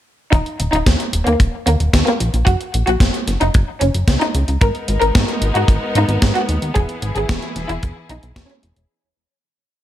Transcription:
0.33 analog synth bass D#1, violin section D#4, kick, closed hi-hat
0.46 closed hi-hat
0.60 analog synth bass D#1, closed hi-hat
0.73 analog synth bass D#1, violin section D#4, closed hi-hat
0.86 analog synth bass D#2, kick, snare, closed hi-hat
1.00 closed hi-hat
1.13 analog synth bass D#1, closed hi-hat
1.26 analog synth bass D#2, violin section A#3, closed hi-hat
1.40 analog synth bass D#1, kick, closed hi-hat
1.67 analog synth bass D#2, violin section A#3, closed hi-hat
1.80 analog synth bass D#1, closed hi-hat
1.93 analog synth bass D#2, kick, snare, closed hi-hat
2.07 violin section A#3, closed hi-hat
2.20 analog synth bass A#1, closed hi-hat
2.34 analog synth bass A#1, closed hi-hat
2.47 analog synth bass F#1, violin section F#4, kick, closed hi-hat
2.61 closed hi-hat
2.74 analog synth bass A#1, closed hi-hat
2.87 analog synth bass A#1, violin section F#4, closed hi-hat
3.00 analog synth bass F#1, kick, snare, closed hi-hat
3.14 closed hi-hat
3.28 analog synth bass F#1, snare, closed hi-hat
3.41 analog synth bass F#1, violin section D#4, closed hi-hat
3.54 analog synth bass F#1, kick, closed hi-hat
3.81 analog synth bass F#1, violin section C#4, closed hi-hat
3.94 analog synth bass F#1, closed hi-hat
4.08 analog synth bass C#2, kick, snare, closed hi-hat
4.21 violin section D#4, closed hi-hat
4.35 analog synth bass C#2, closed hi-hat
4.48 analog synth bass C#2, closed hi-hat
4.61 analog synth bass G#1, string section G#3 B3 D#4 A#4, violin section A#4, kick, closed hi-hat
4.75 closed hi-hat
4.88 analog synth bass G#1, closed hi-hat
5.02 analog synth bass G#1, violin section A#4, closed hi-hat
5.15 analog synth bass G#2, kick, snare, closed hi-hat
5.28 closed hi-hat
5.42 analog synth bass G#1, closed hi-hat
5.55 analog synth bass G#2, violin section F#4, closed hi-hat
5.68 analog synth bass G#1, kick, closed hi-hat
5.95 analog synth bass G#2, violin section D#4, closed hi-hat
6.09 analog synth bass G#1, closed hi-hat
6.22 analog synth bass G#2, kick, snare, closed hi-hat
6.35 violin section F#4, closed hi-hat
6.49 analog synth bass D#2, closed hi-hat
6.62 analog synth bass D#2, closed hi-hat
6.75 analog synth bass E1, string section E3 E4 G#4, violin section G#4, kick, closed hi-hat
6.89 closed hi-hat
7.02 analog synth bass G#1, closed hi-hat
7.16 analog synth bass G#1, violin section G#4, closed hi-hat
7.29 analog synth bass E1, kick, snare, closed hi-hat
7.42 closed hi-hat
7.56 analog synth bass E1, snare, closed hi-hat
7.69 analog synth bass E1, violin section E4, closed hi-hat
7.83 analog synth bass E1, kick, closed hi-hat
8.10 analog synth bass B1, violin section D#4, closed hi-hat
8.23 analog synth bass B1, closed hi-hat
8.36 analog synth bass E1, kick, snare, closed hi-hat
8.50 violin section C#4, closed hi-hat
8.63 analog synth bass E1, closed hi-hat
8.76 analog synth bass E1, closed hi-hat

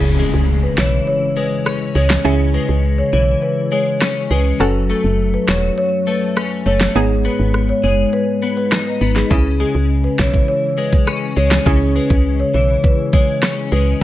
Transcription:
Already playing: fm bass C#2, clean electric guitar C#3, synth pluck C#4 E4 G#4, impact
0.19 clean electric guitar G#3, marimba G#4
0.34 fm bass C#2
0.63 marimba B4
0.78 fm bass B1, clean electric guitar E3, marimba C#5, snare
1.07 marimba C#5
1.37 clean electric guitar G#3, marimba B4
1.66 clean electric guitar C#4, cross-stick
1.95 fm bass C#2, clean electric guitar G#3, marimba C#5
2.10 snare
2.24 fm bass C#2, clean electric guitar C#3, synth pluck C#4 E4 G#4
2.54 clean electric guitar G#3, marimba B4
2.69 fm bass C#2
2.98 marimba C#5
3.13 fm bass B1, clean electric guitar E3, marimba C#5
3.42 marimba B4
3.72 clean electric guitar G#3, marimba C#5
4.01 clean electric guitar C#4, cross-stick, snare
4.31 fm bass C#2, clean electric guitar G#3, marimba B4
4.60 fm bass F#1, clean electric guitar F#2, synth pluck C#4 F#4 A4
4.89 clean electric guitar A3, marimba A4
5.04 fm bass F#1
5.34 marimba B4
5.48 fm bass E1, clean electric guitar F#3, marimba C#5, snare
5.78 marimba C#5
6.07 clean electric guitar A3, marimba B4
6.37 clean electric guitar C#4, cross-stick
6.66 fm bass F#1, clean electric guitar A3, marimba C#5
6.81 snare
6.95 fm bass G#1, clean electric guitar G#2, synth pluck B3 D#4 G#4
7.25 clean electric guitar B3, marimba B4
7.39 fm bass G#1
7.54 cross-stick
7.69 marimba C#5
7.84 fm bass F#1, clean electric guitar G#3, marimba C#5
8.13 marimba B4
8.42 clean electric guitar B3
8.57 marimba B4
8.72 clean electric guitar D#4, cross-stick, snare
8.87 marimba B4
9.01 fm bass G#1, clean electric guitar B3
9.16 marimba G#4, snare
9.30 fm bass C#2, clean electric guitar C#3, synth pluck C#4 E4 G#4, kick
9.60 clean electric guitar G#3, marimba G#4
9.75 fm bass C#2
10.04 marimba B4
10.19 fm bass B1, clean electric guitar E3, marimba C#5, kick, snare
10.34 kick
10.48 marimba C#5
10.78 clean electric guitar G#3, marimba B4
10.93 kick
11.07 clean electric guitar C#4, cross-stick
11.37 fm bass C#2, clean electric guitar G#3, marimba C#5
11.51 snare
11.66 fm bass C#2, clean electric guitar C#3, synth pluck C#4 E4 G#4, kick
11.96 clean electric guitar G#3, marimba B4
12.10 fm bass C#2, kick
12.40 marimba C#5
12.54 fm bass B1, clean electric guitar E3, marimba C#5
12.84 marimba B4, kick
13.13 clean electric guitar G#3, marimba C#5, kick
13.43 clean electric guitar C#4, cross-stick, snare
13.72 fm bass C#2, clean electric guitar G#3, marimba B4

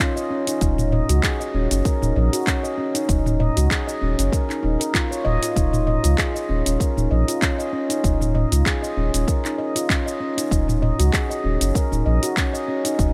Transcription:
0.00 handpan C#4, kick, clap, closed hi-hat, cabasa
0.16 handpan D#5, cabasa
0.30 handpan C#4
0.47 handpan D#4, closed hi-hat, cabasa
0.61 sub bass D#1, handpan D#4, kick, closed hi-hat, cabasa
0.78 handpan D#4, mid tom, cabasa
0.92 handpan D#5, mid tom
1.09 sub bass C#2, handpan F#4, closed hi-hat, cabasa
1.23 handpan G#4, kick, clap, closed hi-hat, cabasa
1.40 handpan D#5, cabasa
1.54 sub bass D#1, handpan C#4
1.71 sub bass F#1, handpan C#4, closed hi-hat, cabasa
1.85 handpan A#4, kick, closed hi-hat, cabasa
2.02 sub bass D#1, handpan D#4, mid tom, cabasa
2.16 sub bass A#1, handpan D#5
2.33 handpan F#4, closed hi-hat, cabasa
2.47 handpan C#4, kick, clap, closed hi-hat, cabasa
2.63 handpan D#5, cabasa
2.78 handpan C#4
2.95 handpan D#4, closed hi-hat, cabasa
3.08 sub bass D#1, handpan D#4, kick, closed hi-hat, cabasa
3.26 handpan D#4, mid tom, cabasa
3.40 handpan D#5, mid tom
3.57 sub bass C#2, handpan F#4, closed hi-hat, cabasa
3.71 handpan G#4, kick, clap, closed hi-hat, cabasa
3.87 handpan D#5, cabasa
4.01 sub bass D#1, handpan C#4
4.18 sub bass F#1, handpan C#4, closed hi-hat, cabasa
4.32 handpan A#4, kick, closed hi-hat, cabasa
4.49 handpan D#4, clap, cabasa
4.63 sub bass D#1, handpan D#4
4.80 handpan A#4, closed hi-hat, cabasa
4.94 handpan F4, kick, clap, closed hi-hat, cabasa
5.11 handpan C#5, cabasa
5.25 sub bass D#1, handpan D#5, mid tom
5.42 handpan F4, closed hi-hat, cabasa
5.56 sub bass D#1, handpan D#4, kick, closed hi-hat, cabasa
5.73 handpan D#4, mid tom, cabasa
5.87 handpan D#5, mid tom
6.04 sub bass C#2, handpan F4, closed hi-hat, cabasa
6.18 handpan G#4, kick, clap, closed hi-hat, cabasa
6.35 handpan D#5, cabasa
6.49 sub bass D#1, handpan C#4
6.66 sub bass D#1, handpan C#4, closed hi-hat, cabasa
6.80 handpan A#4, kick, closed hi-hat, cabasa
6.97 sub bass D#1, handpan D#4, mid tom, cabasa
7.11 sub bass A#1, handpan D#5
7.28 handpan F4, closed hi-hat, cabasa
7.41 handpan C#4, kick, clap, closed hi-hat, cabasa
7.58 handpan D#5, cabasa
7.73 handpan C#4
7.90 handpan D#4, closed hi-hat, cabasa
8.04 sub bass D#1, handpan D#4, kick, closed hi-hat, cabasa
8.21 handpan D#4, mid tom, cabasa
8.35 handpan D#5, mid tom
8.52 sub bass C#2, handpan F4, closed hi-hat, cabasa
8.66 handpan G#4, kick, clap, closed hi-hat, cabasa
8.83 handpan D#5, cabasa
8.97 sub bass D#1, handpan C#4
9.14 sub bass D#1, handpan C#4, closed hi-hat, cabasa
9.27 handpan A#4, kick, closed hi-hat, cabasa
9.44 handpan D#4, clap, cabasa
9.58 handpan D#5
9.75 handpan F4, closed hi-hat, cabasa
9.89 handpan C#4, kick, clap, closed hi-hat, cabasa
10.06 handpan D#5, cabasa
10.20 handpan C#4
10.37 handpan D#4, closed hi-hat, cabasa
10.51 sub bass D#1, handpan D#4, kick, closed hi-hat, cabasa
10.68 handpan D#4, mid tom, cabasa
10.82 handpan D#5, mid tom
10.99 sub bass C#2, handpan F#4, closed hi-hat, cabasa
11.13 handpan G#4, kick, clap, closed hi-hat, cabasa
11.30 handpan D#5, cabasa
11.44 sub bass D#1, handpan C#4
11.61 sub bass F#1, handpan C#4, closed hi-hat, cabasa
11.75 handpan A#4, kick, closed hi-hat, cabasa
11.92 sub bass D#1, handpan D#4, mid tom, cabasa
12.06 sub bass A#1, handpan D#5
12.23 handpan F#4, closed hi-hat, cabasa
12.37 handpan C#4, kick, clap, closed hi-hat, cabasa
12.54 handpan D#5, cabasa
12.68 handpan C#4
12.85 handpan D#4, closed hi-hat, cabasa
12.99 sub bass D#1, handpan D#4, kick, closed hi-hat, cabasa

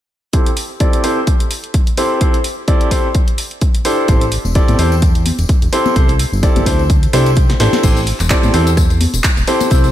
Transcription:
0.33 grand piano C4 E4 G4 A4 C5, kick, closed hi-hat
0.46 closed hi-hat
0.57 open hi-hat
0.80 grand piano C4 E4 G4 A4 D5, kick, closed hi-hat
0.93 closed hi-hat
1.04 grand piano C4 E4 G4 A4 C5, open hi-hat
1.27 kick, closed hi-hat
1.40 closed hi-hat
1.51 open hi-hat
1.64 closed hi-hat
1.74 kick, closed hi-hat
1.87 closed hi-hat
1.97 grand piano C4 E4 G4 A4 C5, open hi-hat
2.21 grand piano C4 E4 G4 A4 C5, kick, closed hi-hat
2.34 closed hi-hat
2.44 open hi-hat
2.68 grand piano C4 E4 G4 A4 D5, kick, closed hi-hat
2.81 closed hi-hat
2.91 grand piano C4 E4 G4 A4 C5, kick, open hi-hat
3.15 kick, closed hi-hat
3.28 closed hi-hat
3.38 open hi-hat
3.51 closed hi-hat
3.61 kick, closed hi-hat
3.75 closed hi-hat
3.85 grand piano D4 E4 G4 A4 C5, open hi-hat
4.08 analog synth bass A1, grand piano C4 E4 G4 A4 C5, kick, closed hi-hat, tambourine
4.21 closed hi-hat, tambourine
4.32 open hi-hat
4.45 analog synth bass E1, tambourine
4.55 grand piano C4 E4 G4 A4 D5, kick, closed hi-hat, tambourine
4.68 analog synth bass A2, closed hi-hat, tambourine, high conga
4.79 analog synth bass E2, grand piano C4 E4 G4 A4 C5, open hi-hat
4.92 tambourine
5.02 kick, closed hi-hat, tambourine
5.15 closed hi-hat, tambourine
5.26 open hi-hat, high conga
5.38 analog synth bass E1, closed hi-hat, tambourine
5.49 kick, closed hi-hat, tambourine
5.62 analog synth bass E1, closed hi-hat, tambourine
5.73 grand piano C4 E4 G4 A4 C5, open hi-hat
5.86 tambourine, high conga
5.96 analog synth bass C2, grand piano C4 E4 G4 A4 C5, kick, closed hi-hat, tambourine
6.08 closed hi-hat, tambourine
6.19 open hi-hat
6.33 analog synth bass G1, tambourine
6.43 grand piano C4 E4 G4 A4 D5, kick, closed hi-hat, tambourine
6.56 analog synth bass G1, closed hi-hat, tambourine, high conga
6.66 analog synth bass D2, grand piano C4 E4 G4 A4 C5, kick, open hi-hat
6.79 tambourine
6.90 kick, closed hi-hat, tambourine
7.03 closed hi-hat, tambourine
7.13 analog synth bass C2, grand piano D4 E4 G4 A4 C5, open hi-hat, high conga
7.26 closed hi-hat, tambourine
7.36 kick, closed hi-hat, tambourine
7.49 snare, closed hi-hat, tambourine
7.60 analog synth bass A1, grand piano D4 E4 G4 A4 C5, snare, open hi-hat
7.73 snare, tambourine, high conga
7.83 analog synth bass A1, grand piano C4 E4 G4 A4 C5, kick, closed hi-hat, crash, tambourine
7.97 closed hi-hat, tambourine
8.07 open hi-hat
8.20 analog synth bass E1, clap, closed hi-hat, tambourine
8.30 grand piano C4 E4 G4 A4 D5, kick, clap, closed hi-hat, tambourine
8.43 analog synth bass A2, closed hi-hat, tambourine, high conga
8.54 analog synth bass E2, grand piano C4 E4 G4 A4 C5, open hi-hat
8.67 closed hi-hat, tambourine
8.77 kick, cross-stick, closed hi-hat, tambourine
8.90 closed hi-hat, tambourine
9.01 open hi-hat, high conga
9.14 analog synth bass E1, closed hi-hat, tambourine
9.24 kick, clap, closed hi-hat, tambourine
9.37 analog synth bass E1, closed hi-hat, tambourine
9.47 grand piano C4 E4 G4 A4 C5, open hi-hat
9.60 closed hi-hat, tambourine, high conga
9.70 analog synth bass C2, grand piano C4 E4 G4 A4 C5, kick, closed hi-hat, tambourine
9.84 closed hi-hat, tambourine

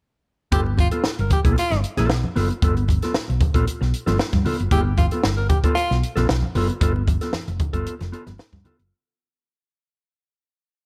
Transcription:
0.52 fingered electric bass G1, clean electric guitar B3 F4 A4, tenor saxophone G4, kick, closed hi-hat, muted conga, low conga
0.66 muted clean electric guitar stroke, muted conga
0.77 tenor saxophone F4, muted clean electric guitar stroke, kick, closed hi-hat, high conga
0.91 clean electric guitar B3 F4 A4, closed hi-hat
1.04 muted clean electric guitar stroke, muted fingered electric bass stroke, snare
1.19 fingered electric bass G1, tenor saxophone A#4, muted clean electric guitar stroke, closed hi-hat
1.30 tenor saxophone G4, kick, closed hi-hat, high conga, low conga
1.45 fingered electric bass B1, clean electric guitar B3 F4 A4, kick, closed hi-hat
1.56 tenor saxophone F4, closed hi-hat, muted conga
1.71 fingered electric bass G1, muted clean electric guitar stroke, snare, closed hi-hat, muted conga
1.84 closed hi-hat
1.97 fingered electric bass A#1, clean electric guitar B3 F4 A4, snare, closed hi-hat, high conga
2.10 fingered electric bass B1, muted clean electric guitar stroke, snare
2.24 muted conga, high conga
2.36 fingered electric bass F#1, clean electric guitar B3 F4 A4, snare, open hi-hat, low conga
2.50 muted clean electric guitar stroke, closed hi-hat
2.62 fingered electric bass G1, clean electric guitar B3 F4 A4, kick, closed hi-hat, muted conga, low conga
2.77 muted clean electric guitar stroke, closed hi-hat, muted conga
2.88 muted clean electric guitar stroke, kick, closed hi-hat, high conga
3.02 clean electric guitar B3 F4 A4, snare, closed hi-hat
3.14 muted fingered electric bass stroke, snare
3.28 fingered electric bass B1, muted clean electric guitar stroke, closed hi-hat, muted conga
3.40 kick, closed hi-hat, high conga, low conga
3.54 fingered electric bass A#1, clean electric guitar B3 F4 A4, kick, closed hi-hat
3.67 muted clean electric guitar stroke, closed hi-hat
3.81 fingered electric bass B1, muted clean electric guitar stroke, snare
3.94 closed hi-hat
4.06 fingered electric bass G1, clean electric guitar B3 F4 A4, snare, closed hi-hat, high conga
4.18 muted clean electric guitar stroke, snare, muted conga
4.32 fingered electric bass G2, kick, snare, closed hi-hat, muted conga, high conga
4.45 clean electric guitar B3 F4 A4, open hi-hat, low conga
4.59 fingered electric bass F#1, muted clean electric guitar stroke, closed hi-hat
4.71 fingered electric bass G1, clean electric guitar B3 F4 A4, tenor saxophone G4, kick, closed hi-hat, muted conga, low conga
4.85 muted clean electric guitar stroke
4.98 tenor saxophone F4, muted clean electric guitar stroke, kick, closed hi-hat, high conga
5.11 clean electric guitar B3 F4 A4, closed hi-hat
5.23 fingered electric bass G1, muted clean electric guitar stroke, snare
5.37 tenor saxophone A#4, muted clean electric guitar stroke, muted conga
5.49 tenor saxophone G4, kick, closed hi-hat, high conga, low conga
5.64 clean electric guitar B3 F4 A4, kick, closed hi-hat
5.75 tenor saxophone F4, muted clean electric guitar stroke, closed hi-hat
5.90 fingered electric bass B1, muted clean electric guitar stroke, snare
6.03 closed hi-hat
6.16 fingered electric bass A#1, clean electric guitar B3 F4 A4, snare, closed hi-hat, high conga
6.29 fingered electric bass B1, snare
6.42 high conga
6.55 fingered electric bass F#1, clean electric guitar B3 F4 A4, open hi-hat, low conga
6.69 muted clean electric guitar stroke, closed hi-hat
6.81 fingered electric bass G1, clean electric guitar B3 F4 A4, kick, closed hi-hat, low conga
6.95 muted clean electric guitar stroke, muted conga
7.08 muted clean electric guitar stroke, kick, closed hi-hat, high conga
7.21 clean electric guitar B3 F4 A4, snare, closed hi-hat
7.33 muted clean electric guitar stroke, muted fingered electric bass stroke, snare, muted conga, high conga
7.48 fingered electric bass F1, muted clean electric guitar stroke, closed hi-hat, muted conga
7.59 kick, closed hi-hat, high conga, low conga
7.73 fingered electric bass G1, clean electric guitar B3 F4 A4, kick, closed hi-hat
7.86 closed hi-hat, muted conga
7.99 fingered electric bass F1, muted clean electric guitar stroke, snare, closed hi-hat, muted conga
8.12 clean electric guitar B3 F4 A4, closed hi-hat
8.26 fingered electric bass G1, muted clean electric guitar stroke, snare, closed hi-hat, high conga
8.38 muted clean electric guitar stroke, snare, muted conga
8.52 fingered electric bass G2, kick, snare, high conga
8.64 clean electric guitar B3 F4 A4, closed hi-hat, low conga
8.79 fingered electric bass F#1, closed hi-hat

